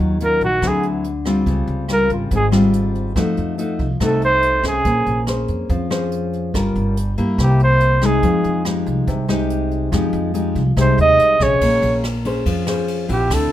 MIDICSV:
0, 0, Header, 1, 5, 480
1, 0, Start_track
1, 0, Tempo, 422535
1, 1664, Time_signature, 4, 2, 24, 8
1, 15361, End_track
2, 0, Start_track
2, 0, Title_t, "Flugelhorn"
2, 0, Program_c, 0, 56
2, 272, Note_on_c, 0, 70, 98
2, 473, Note_off_c, 0, 70, 0
2, 508, Note_on_c, 0, 66, 94
2, 769, Note_on_c, 0, 68, 76
2, 786, Note_off_c, 0, 66, 0
2, 977, Note_off_c, 0, 68, 0
2, 2187, Note_on_c, 0, 70, 95
2, 2391, Note_off_c, 0, 70, 0
2, 2421, Note_on_c, 0, 65, 47
2, 2532, Note_off_c, 0, 65, 0
2, 2676, Note_on_c, 0, 68, 76
2, 2805, Note_off_c, 0, 68, 0
2, 4603, Note_on_c, 0, 69, 75
2, 4800, Note_off_c, 0, 69, 0
2, 4826, Note_on_c, 0, 72, 111
2, 5254, Note_off_c, 0, 72, 0
2, 5313, Note_on_c, 0, 68, 85
2, 5965, Note_off_c, 0, 68, 0
2, 8437, Note_on_c, 0, 67, 73
2, 8638, Note_off_c, 0, 67, 0
2, 8671, Note_on_c, 0, 72, 104
2, 9153, Note_on_c, 0, 68, 84
2, 9170, Note_off_c, 0, 72, 0
2, 9852, Note_off_c, 0, 68, 0
2, 12276, Note_on_c, 0, 72, 86
2, 12478, Note_off_c, 0, 72, 0
2, 12509, Note_on_c, 0, 75, 111
2, 12981, Note_on_c, 0, 73, 94
2, 12998, Note_off_c, 0, 75, 0
2, 13686, Note_off_c, 0, 73, 0
2, 14912, Note_on_c, 0, 67, 78
2, 15151, Note_on_c, 0, 69, 77
2, 15168, Note_off_c, 0, 67, 0
2, 15361, Note_off_c, 0, 69, 0
2, 15361, End_track
3, 0, Start_track
3, 0, Title_t, "Nylon-string guitar"
3, 0, Program_c, 1, 24
3, 0, Note_on_c, 1, 51, 54
3, 0, Note_on_c, 1, 54, 61
3, 0, Note_on_c, 1, 61, 53
3, 0, Note_on_c, 1, 65, 60
3, 191, Note_off_c, 1, 54, 0
3, 195, Note_off_c, 1, 61, 0
3, 197, Note_off_c, 1, 65, 0
3, 241, Note_on_c, 1, 54, 53
3, 249, Note_on_c, 1, 61, 46
3, 249, Note_on_c, 1, 65, 56
3, 543, Note_off_c, 1, 54, 0
3, 544, Note_off_c, 1, 61, 0
3, 546, Note_off_c, 1, 65, 0
3, 686, Note_off_c, 1, 51, 0
3, 714, Note_on_c, 1, 50, 59
3, 715, Note_on_c, 1, 54, 55
3, 721, Note_on_c, 1, 60, 60
3, 722, Note_on_c, 1, 64, 66
3, 1187, Note_off_c, 1, 54, 0
3, 1188, Note_off_c, 1, 60, 0
3, 1191, Note_off_c, 1, 64, 0
3, 1430, Note_on_c, 1, 55, 59
3, 1433, Note_on_c, 1, 60, 67
3, 1439, Note_on_c, 1, 65, 73
3, 1646, Note_off_c, 1, 50, 0
3, 1677, Note_on_c, 1, 49, 55
3, 2109, Note_off_c, 1, 55, 0
3, 2111, Note_off_c, 1, 60, 0
3, 2113, Note_off_c, 1, 65, 0
3, 2147, Note_on_c, 1, 55, 52
3, 2158, Note_on_c, 1, 60, 54
3, 2162, Note_on_c, 1, 65, 57
3, 2607, Note_off_c, 1, 49, 0
3, 2635, Note_on_c, 1, 44, 63
3, 2828, Note_off_c, 1, 55, 0
3, 2834, Note_off_c, 1, 60, 0
3, 2834, Note_off_c, 1, 65, 0
3, 2859, Note_on_c, 1, 55, 66
3, 2867, Note_on_c, 1, 60, 70
3, 2872, Note_on_c, 1, 65, 72
3, 3544, Note_off_c, 1, 55, 0
3, 3548, Note_off_c, 1, 60, 0
3, 3549, Note_off_c, 1, 65, 0
3, 3566, Note_off_c, 1, 44, 0
3, 3589, Note_on_c, 1, 53, 52
3, 3594, Note_on_c, 1, 57, 60
3, 3595, Note_on_c, 1, 63, 52
3, 3600, Note_on_c, 1, 66, 66
3, 4031, Note_off_c, 1, 57, 0
3, 4032, Note_off_c, 1, 63, 0
3, 4034, Note_off_c, 1, 66, 0
3, 4067, Note_on_c, 1, 57, 52
3, 4076, Note_on_c, 1, 63, 49
3, 4081, Note_on_c, 1, 66, 57
3, 4376, Note_off_c, 1, 57, 0
3, 4380, Note_off_c, 1, 63, 0
3, 4383, Note_off_c, 1, 66, 0
3, 4524, Note_off_c, 1, 53, 0
3, 4554, Note_on_c, 1, 48, 54
3, 4555, Note_on_c, 1, 57, 58
3, 4560, Note_on_c, 1, 63, 59
3, 4566, Note_on_c, 1, 66, 67
3, 5232, Note_off_c, 1, 57, 0
3, 5235, Note_off_c, 1, 63, 0
3, 5238, Note_off_c, 1, 66, 0
3, 5270, Note_on_c, 1, 61, 68
3, 5275, Note_on_c, 1, 68, 64
3, 5283, Note_on_c, 1, 72, 71
3, 5487, Note_off_c, 1, 48, 0
3, 5517, Note_on_c, 1, 58, 55
3, 5951, Note_off_c, 1, 61, 0
3, 5952, Note_off_c, 1, 68, 0
3, 5957, Note_off_c, 1, 72, 0
3, 5994, Note_on_c, 1, 61, 51
3, 6000, Note_on_c, 1, 68, 45
3, 6000, Note_on_c, 1, 72, 58
3, 6449, Note_off_c, 1, 58, 0
3, 6475, Note_on_c, 1, 53, 60
3, 6673, Note_off_c, 1, 61, 0
3, 6675, Note_off_c, 1, 68, 0
3, 6676, Note_off_c, 1, 72, 0
3, 6706, Note_on_c, 1, 61, 67
3, 6712, Note_on_c, 1, 68, 64
3, 6713, Note_on_c, 1, 72, 66
3, 7389, Note_off_c, 1, 61, 0
3, 7392, Note_off_c, 1, 72, 0
3, 7393, Note_off_c, 1, 68, 0
3, 7408, Note_off_c, 1, 53, 0
3, 7429, Note_on_c, 1, 55, 55
3, 7434, Note_on_c, 1, 61, 57
3, 7436, Note_on_c, 1, 65, 56
3, 7440, Note_on_c, 1, 70, 70
3, 7908, Note_off_c, 1, 65, 0
3, 7909, Note_off_c, 1, 61, 0
3, 7912, Note_off_c, 1, 70, 0
3, 8148, Note_off_c, 1, 55, 0
3, 8153, Note_on_c, 1, 58, 72
3, 8158, Note_on_c, 1, 64, 63
3, 8161, Note_on_c, 1, 67, 59
3, 8403, Note_on_c, 1, 48, 54
3, 9074, Note_off_c, 1, 58, 0
3, 9075, Note_off_c, 1, 64, 0
3, 9078, Note_off_c, 1, 67, 0
3, 9114, Note_on_c, 1, 56, 67
3, 9119, Note_on_c, 1, 63, 73
3, 9333, Note_off_c, 1, 48, 0
3, 9358, Note_on_c, 1, 53, 58
3, 9794, Note_off_c, 1, 56, 0
3, 9797, Note_off_c, 1, 63, 0
3, 9837, Note_on_c, 1, 56, 51
3, 9844, Note_on_c, 1, 63, 51
3, 9846, Note_on_c, 1, 67, 55
3, 10291, Note_off_c, 1, 53, 0
3, 10311, Note_on_c, 1, 48, 67
3, 10516, Note_off_c, 1, 56, 0
3, 10518, Note_off_c, 1, 63, 0
3, 10520, Note_off_c, 1, 67, 0
3, 10546, Note_on_c, 1, 56, 70
3, 10553, Note_on_c, 1, 63, 78
3, 10563, Note_on_c, 1, 67, 78
3, 11231, Note_off_c, 1, 56, 0
3, 11235, Note_off_c, 1, 63, 0
3, 11237, Note_off_c, 1, 67, 0
3, 11248, Note_off_c, 1, 48, 0
3, 11266, Note_on_c, 1, 53, 61
3, 11272, Note_on_c, 1, 56, 60
3, 11278, Note_on_c, 1, 67, 69
3, 11281, Note_on_c, 1, 63, 66
3, 11712, Note_off_c, 1, 56, 0
3, 11714, Note_off_c, 1, 63, 0
3, 11717, Note_off_c, 1, 67, 0
3, 11746, Note_on_c, 1, 56, 58
3, 11752, Note_on_c, 1, 63, 55
3, 11756, Note_on_c, 1, 67, 60
3, 12058, Note_off_c, 1, 56, 0
3, 12061, Note_off_c, 1, 67, 0
3, 12062, Note_off_c, 1, 63, 0
3, 12207, Note_off_c, 1, 53, 0
3, 12232, Note_on_c, 1, 56, 56
3, 12234, Note_on_c, 1, 48, 61
3, 12236, Note_on_c, 1, 63, 58
3, 12242, Note_on_c, 1, 67, 75
3, 12913, Note_off_c, 1, 56, 0
3, 12913, Note_off_c, 1, 63, 0
3, 12918, Note_off_c, 1, 67, 0
3, 12957, Note_on_c, 1, 61, 76
3, 12964, Note_on_c, 1, 68, 66
3, 13169, Note_off_c, 1, 48, 0
3, 13204, Note_on_c, 1, 58, 55
3, 13635, Note_off_c, 1, 61, 0
3, 13639, Note_off_c, 1, 68, 0
3, 13916, Note_on_c, 1, 61, 66
3, 13923, Note_on_c, 1, 68, 65
3, 13930, Note_on_c, 1, 72, 70
3, 14133, Note_off_c, 1, 58, 0
3, 14155, Note_on_c, 1, 53, 59
3, 14355, Note_off_c, 1, 61, 0
3, 14359, Note_off_c, 1, 68, 0
3, 14361, Note_off_c, 1, 72, 0
3, 14397, Note_on_c, 1, 61, 73
3, 14404, Note_on_c, 1, 68, 66
3, 14406, Note_on_c, 1, 72, 65
3, 14836, Note_off_c, 1, 61, 0
3, 14838, Note_off_c, 1, 68, 0
3, 14840, Note_off_c, 1, 72, 0
3, 14865, Note_on_c, 1, 60, 60
3, 14873, Note_on_c, 1, 64, 61
3, 14878, Note_on_c, 1, 66, 65
3, 15089, Note_off_c, 1, 53, 0
3, 15114, Note_on_c, 1, 50, 56
3, 15361, Note_off_c, 1, 50, 0
3, 15361, Note_off_c, 1, 60, 0
3, 15361, Note_off_c, 1, 64, 0
3, 15361, Note_off_c, 1, 66, 0
3, 15361, End_track
4, 0, Start_track
4, 0, Title_t, "Upright bass"
4, 0, Program_c, 2, 32
4, 0, Note_on_c, 2, 39, 90
4, 433, Note_off_c, 2, 39, 0
4, 468, Note_on_c, 2, 34, 85
4, 689, Note_off_c, 2, 34, 0
4, 709, Note_on_c, 2, 38, 96
4, 1622, Note_off_c, 2, 38, 0
4, 1665, Note_on_c, 2, 37, 96
4, 1888, Note_off_c, 2, 37, 0
4, 1903, Note_on_c, 2, 37, 89
4, 2350, Note_off_c, 2, 37, 0
4, 2383, Note_on_c, 2, 32, 89
4, 2607, Note_off_c, 2, 32, 0
4, 2627, Note_on_c, 2, 32, 97
4, 3541, Note_off_c, 2, 32, 0
4, 3587, Note_on_c, 2, 41, 100
4, 3809, Note_off_c, 2, 41, 0
4, 3838, Note_on_c, 2, 41, 81
4, 4279, Note_off_c, 2, 41, 0
4, 4312, Note_on_c, 2, 36, 86
4, 4533, Note_off_c, 2, 36, 0
4, 4551, Note_on_c, 2, 36, 87
4, 5464, Note_off_c, 2, 36, 0
4, 5511, Note_on_c, 2, 34, 88
4, 5732, Note_off_c, 2, 34, 0
4, 5755, Note_on_c, 2, 34, 88
4, 6198, Note_off_c, 2, 34, 0
4, 6230, Note_on_c, 2, 41, 85
4, 6452, Note_off_c, 2, 41, 0
4, 6470, Note_on_c, 2, 41, 99
4, 7384, Note_off_c, 2, 41, 0
4, 7432, Note_on_c, 2, 31, 88
4, 7654, Note_off_c, 2, 31, 0
4, 7674, Note_on_c, 2, 31, 88
4, 8119, Note_off_c, 2, 31, 0
4, 8162, Note_on_c, 2, 43, 86
4, 8380, Note_off_c, 2, 43, 0
4, 8389, Note_on_c, 2, 36, 97
4, 9305, Note_off_c, 2, 36, 0
4, 9350, Note_on_c, 2, 41, 100
4, 9573, Note_off_c, 2, 41, 0
4, 9591, Note_on_c, 2, 41, 86
4, 10037, Note_off_c, 2, 41, 0
4, 10070, Note_on_c, 2, 36, 92
4, 10294, Note_off_c, 2, 36, 0
4, 10311, Note_on_c, 2, 36, 96
4, 11226, Note_off_c, 2, 36, 0
4, 11273, Note_on_c, 2, 41, 102
4, 11496, Note_off_c, 2, 41, 0
4, 11506, Note_on_c, 2, 41, 100
4, 11955, Note_off_c, 2, 41, 0
4, 11994, Note_on_c, 2, 36, 91
4, 12216, Note_off_c, 2, 36, 0
4, 12230, Note_on_c, 2, 36, 89
4, 12454, Note_off_c, 2, 36, 0
4, 12472, Note_on_c, 2, 39, 98
4, 12688, Note_off_c, 2, 39, 0
4, 12709, Note_on_c, 2, 36, 74
4, 12926, Note_off_c, 2, 36, 0
4, 12957, Note_on_c, 2, 34, 82
4, 13170, Note_off_c, 2, 34, 0
4, 13195, Note_on_c, 2, 34, 101
4, 13417, Note_off_c, 2, 34, 0
4, 13430, Note_on_c, 2, 34, 95
4, 14105, Note_off_c, 2, 34, 0
4, 14151, Note_on_c, 2, 41, 85
4, 14825, Note_off_c, 2, 41, 0
4, 14873, Note_on_c, 2, 34, 97
4, 15095, Note_off_c, 2, 34, 0
4, 15113, Note_on_c, 2, 38, 102
4, 15335, Note_off_c, 2, 38, 0
4, 15361, End_track
5, 0, Start_track
5, 0, Title_t, "Drums"
5, 230, Note_on_c, 9, 42, 51
5, 344, Note_off_c, 9, 42, 0
5, 463, Note_on_c, 9, 42, 27
5, 577, Note_off_c, 9, 42, 0
5, 705, Note_on_c, 9, 36, 58
5, 706, Note_on_c, 9, 37, 60
5, 706, Note_on_c, 9, 42, 41
5, 818, Note_off_c, 9, 36, 0
5, 819, Note_off_c, 9, 37, 0
5, 819, Note_off_c, 9, 42, 0
5, 944, Note_on_c, 9, 42, 29
5, 1057, Note_off_c, 9, 42, 0
5, 1184, Note_on_c, 9, 42, 43
5, 1297, Note_off_c, 9, 42, 0
5, 1424, Note_on_c, 9, 37, 57
5, 1424, Note_on_c, 9, 42, 26
5, 1538, Note_off_c, 9, 37, 0
5, 1538, Note_off_c, 9, 42, 0
5, 1663, Note_on_c, 9, 36, 62
5, 1667, Note_on_c, 9, 42, 41
5, 1776, Note_off_c, 9, 36, 0
5, 1780, Note_off_c, 9, 42, 0
5, 1904, Note_on_c, 9, 42, 26
5, 2017, Note_off_c, 9, 42, 0
5, 2142, Note_on_c, 9, 37, 62
5, 2142, Note_on_c, 9, 42, 45
5, 2256, Note_off_c, 9, 37, 0
5, 2256, Note_off_c, 9, 42, 0
5, 2385, Note_on_c, 9, 42, 30
5, 2499, Note_off_c, 9, 42, 0
5, 2624, Note_on_c, 9, 36, 56
5, 2624, Note_on_c, 9, 42, 44
5, 2737, Note_off_c, 9, 36, 0
5, 2737, Note_off_c, 9, 42, 0
5, 2864, Note_on_c, 9, 37, 66
5, 2864, Note_on_c, 9, 42, 33
5, 2978, Note_off_c, 9, 37, 0
5, 2978, Note_off_c, 9, 42, 0
5, 3106, Note_on_c, 9, 42, 45
5, 3219, Note_off_c, 9, 42, 0
5, 3352, Note_on_c, 9, 42, 27
5, 3465, Note_off_c, 9, 42, 0
5, 3587, Note_on_c, 9, 36, 58
5, 3591, Note_on_c, 9, 37, 58
5, 3591, Note_on_c, 9, 42, 46
5, 3701, Note_off_c, 9, 36, 0
5, 3704, Note_off_c, 9, 37, 0
5, 3704, Note_off_c, 9, 42, 0
5, 3827, Note_on_c, 9, 42, 29
5, 3941, Note_off_c, 9, 42, 0
5, 4073, Note_on_c, 9, 42, 49
5, 4187, Note_off_c, 9, 42, 0
5, 4307, Note_on_c, 9, 42, 27
5, 4308, Note_on_c, 9, 36, 58
5, 4421, Note_off_c, 9, 42, 0
5, 4422, Note_off_c, 9, 36, 0
5, 4548, Note_on_c, 9, 37, 61
5, 4548, Note_on_c, 9, 42, 42
5, 4549, Note_on_c, 9, 36, 61
5, 4661, Note_off_c, 9, 37, 0
5, 4661, Note_off_c, 9, 42, 0
5, 4663, Note_off_c, 9, 36, 0
5, 4790, Note_on_c, 9, 42, 29
5, 4904, Note_off_c, 9, 42, 0
5, 5026, Note_on_c, 9, 42, 45
5, 5140, Note_off_c, 9, 42, 0
5, 5265, Note_on_c, 9, 37, 62
5, 5265, Note_on_c, 9, 42, 26
5, 5267, Note_on_c, 9, 36, 53
5, 5378, Note_off_c, 9, 37, 0
5, 5378, Note_off_c, 9, 42, 0
5, 5381, Note_off_c, 9, 36, 0
5, 5506, Note_on_c, 9, 42, 43
5, 5509, Note_on_c, 9, 36, 67
5, 5619, Note_off_c, 9, 42, 0
5, 5623, Note_off_c, 9, 36, 0
5, 5751, Note_on_c, 9, 42, 26
5, 5865, Note_off_c, 9, 42, 0
5, 5985, Note_on_c, 9, 37, 63
5, 5985, Note_on_c, 9, 42, 45
5, 6099, Note_off_c, 9, 37, 0
5, 6099, Note_off_c, 9, 42, 0
5, 6227, Note_on_c, 9, 42, 28
5, 6340, Note_off_c, 9, 42, 0
5, 6467, Note_on_c, 9, 42, 43
5, 6469, Note_on_c, 9, 36, 55
5, 6581, Note_off_c, 9, 42, 0
5, 6583, Note_off_c, 9, 36, 0
5, 6711, Note_on_c, 9, 37, 67
5, 6711, Note_on_c, 9, 42, 28
5, 6825, Note_off_c, 9, 37, 0
5, 6825, Note_off_c, 9, 42, 0
5, 6949, Note_on_c, 9, 42, 46
5, 7063, Note_off_c, 9, 42, 0
5, 7193, Note_on_c, 9, 42, 27
5, 7306, Note_off_c, 9, 42, 0
5, 7431, Note_on_c, 9, 36, 57
5, 7437, Note_on_c, 9, 37, 63
5, 7437, Note_on_c, 9, 42, 45
5, 7544, Note_off_c, 9, 36, 0
5, 7550, Note_off_c, 9, 37, 0
5, 7550, Note_off_c, 9, 42, 0
5, 7678, Note_on_c, 9, 42, 28
5, 7791, Note_off_c, 9, 42, 0
5, 7917, Note_on_c, 9, 42, 53
5, 8031, Note_off_c, 9, 42, 0
5, 8152, Note_on_c, 9, 42, 30
5, 8265, Note_off_c, 9, 42, 0
5, 8387, Note_on_c, 9, 36, 59
5, 8390, Note_on_c, 9, 37, 58
5, 8390, Note_on_c, 9, 42, 43
5, 8501, Note_off_c, 9, 36, 0
5, 8504, Note_off_c, 9, 37, 0
5, 8504, Note_off_c, 9, 42, 0
5, 8630, Note_on_c, 9, 42, 31
5, 8743, Note_off_c, 9, 42, 0
5, 8865, Note_on_c, 9, 42, 45
5, 8979, Note_off_c, 9, 42, 0
5, 9105, Note_on_c, 9, 37, 58
5, 9105, Note_on_c, 9, 42, 29
5, 9218, Note_off_c, 9, 37, 0
5, 9218, Note_off_c, 9, 42, 0
5, 9346, Note_on_c, 9, 42, 44
5, 9347, Note_on_c, 9, 36, 64
5, 9460, Note_off_c, 9, 36, 0
5, 9460, Note_off_c, 9, 42, 0
5, 9588, Note_on_c, 9, 42, 26
5, 9702, Note_off_c, 9, 42, 0
5, 9827, Note_on_c, 9, 37, 69
5, 9827, Note_on_c, 9, 42, 46
5, 9941, Note_off_c, 9, 37, 0
5, 9941, Note_off_c, 9, 42, 0
5, 10075, Note_on_c, 9, 42, 30
5, 10188, Note_off_c, 9, 42, 0
5, 10309, Note_on_c, 9, 36, 65
5, 10309, Note_on_c, 9, 42, 46
5, 10423, Note_off_c, 9, 36, 0
5, 10423, Note_off_c, 9, 42, 0
5, 10550, Note_on_c, 9, 37, 64
5, 10550, Note_on_c, 9, 42, 30
5, 10664, Note_off_c, 9, 37, 0
5, 10664, Note_off_c, 9, 42, 0
5, 10794, Note_on_c, 9, 42, 42
5, 10907, Note_off_c, 9, 42, 0
5, 11032, Note_on_c, 9, 42, 29
5, 11146, Note_off_c, 9, 42, 0
5, 11270, Note_on_c, 9, 36, 64
5, 11275, Note_on_c, 9, 37, 59
5, 11275, Note_on_c, 9, 42, 44
5, 11384, Note_off_c, 9, 36, 0
5, 11388, Note_off_c, 9, 37, 0
5, 11388, Note_off_c, 9, 42, 0
5, 11516, Note_on_c, 9, 42, 26
5, 11630, Note_off_c, 9, 42, 0
5, 11752, Note_on_c, 9, 42, 53
5, 11866, Note_off_c, 9, 42, 0
5, 11989, Note_on_c, 9, 42, 29
5, 11990, Note_on_c, 9, 36, 59
5, 12102, Note_off_c, 9, 42, 0
5, 12104, Note_off_c, 9, 36, 0
5, 12231, Note_on_c, 9, 36, 58
5, 12235, Note_on_c, 9, 37, 60
5, 12235, Note_on_c, 9, 42, 51
5, 12344, Note_off_c, 9, 36, 0
5, 12348, Note_off_c, 9, 37, 0
5, 12348, Note_off_c, 9, 42, 0
5, 12476, Note_on_c, 9, 42, 33
5, 12590, Note_off_c, 9, 42, 0
5, 12717, Note_on_c, 9, 42, 47
5, 12830, Note_off_c, 9, 42, 0
5, 12952, Note_on_c, 9, 36, 53
5, 12952, Note_on_c, 9, 37, 57
5, 12952, Note_on_c, 9, 42, 26
5, 13066, Note_off_c, 9, 36, 0
5, 13066, Note_off_c, 9, 37, 0
5, 13066, Note_off_c, 9, 42, 0
5, 13191, Note_on_c, 9, 36, 62
5, 13191, Note_on_c, 9, 51, 62
5, 13305, Note_off_c, 9, 36, 0
5, 13305, Note_off_c, 9, 51, 0
5, 13433, Note_on_c, 9, 51, 39
5, 13547, Note_off_c, 9, 51, 0
5, 13673, Note_on_c, 9, 37, 66
5, 13673, Note_on_c, 9, 51, 43
5, 13787, Note_off_c, 9, 37, 0
5, 13787, Note_off_c, 9, 51, 0
5, 13915, Note_on_c, 9, 51, 45
5, 14028, Note_off_c, 9, 51, 0
5, 14151, Note_on_c, 9, 36, 54
5, 14154, Note_on_c, 9, 51, 56
5, 14265, Note_off_c, 9, 36, 0
5, 14268, Note_off_c, 9, 51, 0
5, 14389, Note_on_c, 9, 37, 63
5, 14389, Note_on_c, 9, 51, 45
5, 14502, Note_off_c, 9, 37, 0
5, 14502, Note_off_c, 9, 51, 0
5, 14631, Note_on_c, 9, 51, 42
5, 14744, Note_off_c, 9, 51, 0
5, 14873, Note_on_c, 9, 51, 41
5, 14987, Note_off_c, 9, 51, 0
5, 15110, Note_on_c, 9, 36, 63
5, 15115, Note_on_c, 9, 37, 67
5, 15115, Note_on_c, 9, 51, 60
5, 15223, Note_off_c, 9, 36, 0
5, 15229, Note_off_c, 9, 37, 0
5, 15229, Note_off_c, 9, 51, 0
5, 15361, End_track
0, 0, End_of_file